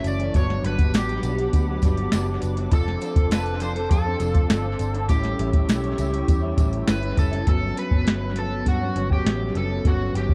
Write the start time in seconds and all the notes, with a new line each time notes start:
Already playing: E3 A3 C#4 F#4 E5 A5 C#6
0.04 F#1 D5, closed hi-hat, tambourine
0.19 E3 A3 C#4, closed hi-hat
0.34 G1 G2 F#3 B3 D4 G4 C#5 F#5 B5 D6, kick, closed hi-hat, tambourine
0.50 snare
0.64 G1 G2 F#3 B3 D4 B4, closed hi-hat
0.79 kick, closed hi-hat
0.94 A1 G2 F#3 B3 D4 G4, snare, closed hi-hat, tambourine
1.09 closed hi-hat
1.23 B1 G2 F#3 B3 D4, closed hi-hat, tambourine
1.38 F#3 B3 D4, closed hi-hat
1.53 D2, kick, closed hi-hat, tambourine
1.67 F#3 B3 D4
1.82 G1 G2 F#3 B3 D4, kick, closed hi-hat, tambourine
1.97 closed hi-hat
2.12 F#1 G2 F#3 B3 D4, snare, closed hi-hat, tambourine
2.28 F#3 B3 D4
2.42 F#1, closed hi-hat, tambourine
2.57 F#3 B3 D4, closed hi-hat
2.71 F1 F3 C4 D4 A4 F5 C6, kick, closed hi-hat, tambourine
2.88 snare
3.01 F3 C4 D4 A4, closed hi-hat, tambourine
3.16 F1, kick, closed hi-hat
3.31 F3 C4 D4 A4 B4, snare, closed hi-hat, tambourine
3.46 closed hi-hat
3.60 F3 C4 D4 A4 C5, closed hi-hat, tambourine
3.75 C4 D4 A4, closed hi-hat
3.91 F2 A4, kick, closed hi-hat, tambourine
4.05 C4 D4 A4
4.19 F1 F3 C4 D4 A4, closed hi-hat, tambourine
4.35 kick, closed hi-hat
4.49 G1 F3 C4 D4 A4, snare, closed hi-hat, tambourine
4.64 C4 D4 A4
4.79 G1, closed hi-hat, tambourine
4.94 C4 D4 A4, closed hi-hat
5.09 A1 A2 G3 C#4 E4 G4 G5 C#6 E6, kick, closed hi-hat, tambourine
5.24 snare, closed hi-hat
5.38 A1 A2 G3 C#4 E4, closed hi-hat
5.53 kick, closed hi-hat
5.68 B1 A2 G3 C#4 E4, snare, closed hi-hat, tambourine
5.84 closed hi-hat
5.97 C#2 A2 G3 C#4 E4, closed hi-hat, tambourine
6.12 G3 C#4 E4, closed hi-hat
6.28 E2, kick, closed hi-hat, tambourine
6.42 G3 C#4 E4
6.57 A1 A2 G3 C#4 E4, kick, closed hi-hat, tambourine
6.73 closed hi-hat
6.87 G1 A2 G3 C#4 E4 B4, snare, closed hi-hat, tambourine
7.01 G3 C#4 E4, closed hi-hat
7.17 F#1 A4, kick, closed hi-hat, tambourine
7.31 G3 C#4 E4, closed hi-hat
7.47 G1 G2 F#3 B3 C#4 A4, kick, closed hi-hat
7.75 G2 F#3 B3 C#4 B4, closed hi-hat
7.91 G1 F#3 B3 C#4, kick
8.04 G2 F#3 B3 C#4, snare, closed hi-hat
8.36 A4, closed hi-hat
8.50 F#3 B3 C#4
8.66 G2 F#4, kick, closed hi-hat
8.80 F#3 B3 C#4
8.95 G1 G2 F#3 B3 C#4, closed hi-hat
9.10 F#3 B3 C#4 G4, kick
9.25 A1 G2 F#3 B3 C#4, snare, closed hi-hat
9.54 F#1 G2 F#3 B3 C#4 A4, closed hi-hat
9.70 F#3 B3 C#4
9.85 G1 G2 F#3 B3 C#4 F#4, kick, closed hi-hat
10.14 G1 G2 F#3 B3 C#4 G4, closed hi-hat
10.29 B3 C#4, kick